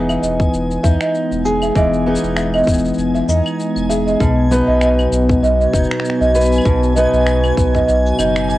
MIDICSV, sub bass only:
0, 0, Header, 1, 2, 480
1, 0, Start_track
1, 0, Key_signature, 4, "major"
1, 0, Tempo, 612245
1, 1377, Time_signature, 4, 2, 24, 8
1, 6727, End_track
2, 0, Start_track
2, 0, Title_t, "Sub bass"
2, 0, Program_c, 0, 38
2, 0, Note_on_c, 0, 28, 98
2, 140, Note_off_c, 0, 28, 0
2, 177, Note_on_c, 0, 28, 82
2, 371, Note_off_c, 0, 28, 0
2, 422, Note_on_c, 0, 28, 105
2, 613, Note_off_c, 0, 28, 0
2, 658, Note_on_c, 0, 40, 96
2, 762, Note_off_c, 0, 40, 0
2, 1032, Note_on_c, 0, 28, 101
2, 1340, Note_off_c, 0, 28, 0
2, 1376, Note_on_c, 0, 28, 105
2, 1703, Note_off_c, 0, 28, 0
2, 1751, Note_on_c, 0, 28, 103
2, 2059, Note_off_c, 0, 28, 0
2, 2096, Note_on_c, 0, 28, 82
2, 2290, Note_off_c, 0, 28, 0
2, 2334, Note_on_c, 0, 28, 98
2, 2529, Note_off_c, 0, 28, 0
2, 2574, Note_on_c, 0, 40, 94
2, 2680, Note_off_c, 0, 40, 0
2, 2949, Note_on_c, 0, 28, 99
2, 3258, Note_off_c, 0, 28, 0
2, 3296, Note_on_c, 0, 35, 93
2, 3623, Note_off_c, 0, 35, 0
2, 3668, Note_on_c, 0, 35, 101
2, 3978, Note_off_c, 0, 35, 0
2, 4013, Note_on_c, 0, 35, 82
2, 4208, Note_off_c, 0, 35, 0
2, 4253, Note_on_c, 0, 35, 106
2, 4448, Note_off_c, 0, 35, 0
2, 4499, Note_on_c, 0, 30, 104
2, 4602, Note_off_c, 0, 30, 0
2, 4868, Note_on_c, 0, 35, 106
2, 5178, Note_off_c, 0, 35, 0
2, 5216, Note_on_c, 0, 35, 102
2, 5544, Note_off_c, 0, 35, 0
2, 5590, Note_on_c, 0, 35, 105
2, 5899, Note_off_c, 0, 35, 0
2, 5939, Note_on_c, 0, 35, 81
2, 6131, Note_off_c, 0, 35, 0
2, 6182, Note_on_c, 0, 35, 101
2, 6373, Note_off_c, 0, 35, 0
2, 6419, Note_on_c, 0, 30, 106
2, 6727, Note_off_c, 0, 30, 0
2, 6727, End_track
0, 0, End_of_file